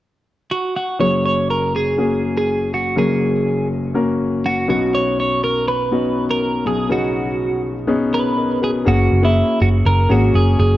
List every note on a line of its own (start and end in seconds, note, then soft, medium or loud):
0.51 0.74 F#4 medium
0.76 1.00 F#4 medium
0.99 2.93 F#1 soft
0.99 2.93 F#2 soft
0.99 1.82 A#3 medium
0.99 1.82 C#4 soft
0.99 1.83 F#4 soft
0.99 1.83 G#4 medium
0.99 1.24 C#5 medium
1.26 1.50 C#5 medium
1.50 1.73 A#4 medium
1.76 2.36 G#4 medium
1.98 2.81 A#3 soft
1.98 2.81 C#4 soft
1.98 2.81 F#4 soft
1.98 2.81 G#4 medium
2.38 2.74 G#4 medium
2.74 2.98 F#4 medium
2.96 4.65 F#1 soft
2.96 4.65 F#2 soft
2.96 3.79 A#3 medium
2.96 3.79 C#4 soft
2.96 3.79 F#4 soft
2.96 3.67 G#4 medium
2.96 3.79 A#4 medium
3.94 4.68 A#3 medium
3.94 4.67 C#4 medium
3.94 4.67 F#4 medium
3.94 4.69 A#4 medium
4.46 4.69 F#4 medium
4.68 6.61 B1 soft
4.68 6.61 B2 soft
4.68 5.51 B3 medium
4.68 5.51 C#4 soft
4.68 5.51 D#4 medium
4.68 5.52 F#4 medium
4.68 4.92 F#4 medium
4.95 5.19 C#5 medium
5.20 5.43 C#5 medium
5.44 5.66 A#4 medium
5.68 6.25 B4 medium
5.91 6.74 B3 medium
5.91 6.75 C#4 medium
5.91 6.75 D#4 medium
5.91 6.75 F#4 medium
6.31 6.64 A#4 medium
6.65 8.58 B1 soft
6.65 8.58 B2 soft
6.65 6.89 G#4 medium
6.89 7.73 B3 medium
6.89 7.73 C#4 medium
6.89 7.73 D#4 medium
6.89 7.61 F#4 medium
6.89 7.73 G#4 medium
7.87 8.71 B3 medium
7.87 8.71 C#4 medium
7.87 8.36 D#4 medium
7.87 8.38 G#4 medium
8.14 8.60 B4 medium
8.37 8.61 D#4 soft
8.37 8.61 A#4 soft
8.62 8.84 F#4 soft
8.62 8.70 G#4 medium
8.62 9.09 B4 medium
8.85 9.07 F#1 medium
8.85 9.17 A#3 medium
8.85 9.17 C#4 medium
8.85 9.17 F#4 medium
8.85 9.22 F#4 medium
8.85 9.18 G#4 medium
9.12 9.42 F#1 medium
9.22 9.95 A#3 medium
9.22 9.96 C#4 medium
9.22 9.59 E4 medium
9.22 9.96 F#4 medium
9.22 9.96 G#4 medium
9.61 9.81 F#1 medium
9.61 9.68 F#4 medium
9.86 10.06 F#1 medium
9.86 10.11 A#4 medium
10.09 10.30 G#1 medium
10.09 10.71 A#3 medium
10.09 10.72 C#4 medium
10.09 10.72 F#4 medium
10.09 10.34 F#4 medium
10.09 10.72 G#4 medium
10.34 10.55 F#1 medium
10.34 10.58 G#4 medium
10.59 10.77 F#1 medium
10.59 10.77 G#4 medium